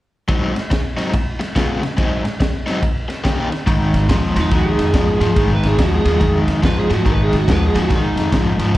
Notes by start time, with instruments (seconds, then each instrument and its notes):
0.28 overdriven electric guitar G#2 F#3 C4 D#4, kick, ride
0.55 muted overdriven electric guitar stroke, snare, ride
0.70 muted overdriven electric guitar stroke, kick, snare, ride
0.97 overdriven electric guitar G#2 F#3 C4 D#4, snare, ride
1.13 muted overdriven electric guitar stroke, kick, ride
1.40 muted overdriven electric guitar stroke, snare, ride
1.55 overdriven electric guitar C#3 G#3 B3 F4, kick, snare, ride
1.83 muted overdriven electric guitar stroke, snare, ride
1.97 overdriven electric guitar G#2 F#3 C4 D#4, kick, ride
2.24 muted overdriven electric guitar stroke, snare, ride
2.40 muted overdriven electric guitar stroke, kick, snare, ride
2.66 overdriven electric guitar G#2 F#3 C4 D#4, snare, ride
2.82 muted overdriven electric guitar stroke, kick, ride
3.08 muted overdriven electric guitar stroke, snare, ride
3.24 overdriven electric guitar D#3 A#3 C#4 G4, kick, snare, ride
3.51 muted overdriven electric guitar stroke, snare, ride
3.67 upright bass G#1, overdriven electric guitar G#2 D#3, kick, ride
3.94 upright bass G#1, snare, ride
4.09 upright bass D#2, overdriven electric guitar G#2 F3, kick, snare, ride
4.36 upright bass D#2, overdriven electric guitar G#2 F3, snare, ride
4.40 electric slide guitar D#4
4.51 upright bass F2, overdriven electric guitar G#2 D#3, kick, ride
4.55 electric slide guitar F#4
4.69 electric slide guitar G#4
4.78 upright bass F2, snare, ride
4.93 overdriven electric guitar G#2 F3, upright bass G#2, kick, snare, ride
5.20 overdriven electric guitar G#2 F3, upright bass G#2, snare, ride
5.36 upright bass G#1, overdriven electric guitar G#2 D#3, kick, ride
5.55 electric slide guitar B4
5.63 upright bass G#1, snare, ride
5.67 electric slide guitar G#4
5.78 upright bass D#2, overdriven electric guitar G#2 F3, electric slide guitar F#4, kick, snare, ride
5.95 electric slide guitar G#4
6.05 upright bass D#2, overdriven electric guitar G#2 F3, snare, ride
6.20 upright bass F2, overdriven electric guitar G#2 D#3, kick, ride
6.48 upright bass F2, snare, ride
6.62 overdriven electric guitar G#2 F3, upright bass G#2, electric slide guitar B4, kick, snare, ride
6.79 electric slide guitar G#4
6.90 overdriven electric guitar G#2 F3, upright bass G#2, snare, ride
6.94 electric slide guitar F#4
7.05 upright bass G#1, overdriven electric guitar G#2 D#3, electric slide guitar B4, kick, ride
7.23 electric slide guitar G#4
7.32 upright bass G#1, snare, ride
7.38 electric slide guitar F#4
7.48 upright bass D#2, overdriven electric guitar G#2 F3, electric slide guitar B4, kick, snare, ride
7.66 electric slide guitar G#4
7.74 upright bass D#2, overdriven electric guitar G#2 F3, snare, ride
7.81 electric slide guitar F#4
7.89 upright bass F2, overdriven electric guitar G#2 D#3, kick, snare, ride
7.95 electric slide guitar D#4
8.16 upright bass F2, snare, ride
8.32 overdriven electric guitar G#2 F3, upright bass G#2, kick, snare, ride
8.58 upright bass G#2, overdriven electric guitar G#2 F3, snare, ride